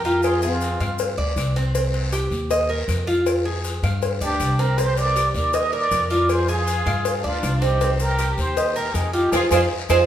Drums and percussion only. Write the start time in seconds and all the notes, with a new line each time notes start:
0.04 short guiro, maracas
0.23 cowbell, long guiro, claves, maracas
0.42 maracas
0.61 cowbell, short guiro, maracas
0.80 cowbell, short guiro, claves, maracas
0.98 cowbell, long guiro, maracas
1.37 cowbell, short guiro, claves, maracas
1.56 cowbell, short guiro, maracas
1.75 cowbell, long guiro, maracas
1.94 cowbell
2.12 cowbell, short guiro, claves, maracas
2.31 short guiro, maracas
2.51 cowbell, long guiro, maracas
2.89 cowbell, short guiro, claves, maracas
3.08 short guiro, maracas
3.26 cowbell, long guiro, claves, maracas
3.64 cowbell, short guiro, maracas
3.83 cowbell, short guiro, claves, maracas
4.02 cowbell, long guiro, maracas
4.21 maracas
4.40 cowbell, short guiro, claves, maracas
4.59 cowbell, short guiro, maracas
4.78 cowbell, long guiro, maracas
4.97 cowbell, maracas
5.16 cowbell, short guiro, claves, maracas
5.34 short guiro, maracas
5.53 cowbell, long guiro, maracas
5.91 cowbell, short guiro, claves, maracas
6.10 short guiro, maracas
6.29 cowbell, long guiro, claves, maracas
6.48 maracas
6.67 cowbell, short guiro, maracas
6.86 cowbell, short guiro, claves, maracas
7.05 cowbell, long guiro, maracas
7.43 cowbell, short guiro, claves, maracas
7.62 cowbell, short guiro, maracas
7.81 cowbell, long guiro, maracas
7.99 cowbell, maracas
8.19 cowbell, short guiro, claves, maracas
8.38 short guiro, maracas
8.57 cowbell, long guiro, maracas
8.76 maracas
8.94 cowbell, short guiro, claves, maracas
9.13 short guiro, maracas
9.32 cowbell, long guiro, claves, maracas
9.51 cowbell, long guiro, claves, maracas
9.89 cowbell, long guiro, claves, maracas